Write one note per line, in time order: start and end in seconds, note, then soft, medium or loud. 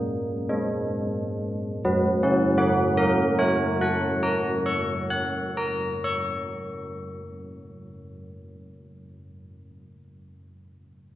0.00 0.22 A#3 medium
0.00 1.79 C#5 soft
0.00 1.11 F#5 medium
0.49 1.58 G#3 soft
1.85 5.29 F#3 medium
2.23 5.67 C#4 medium
2.58 6.02 F#4 medium
2.97 6.42 A#4 medium
3.39 6.83 C#5 soft
3.81 7.26 F#5 soft
4.23 5.56 A#5 soft
4.66 6.03 C#6 soft
5.10 8.55 F#6 soft
5.57 8.80 A#5 soft
6.04 8.79 C#6 soft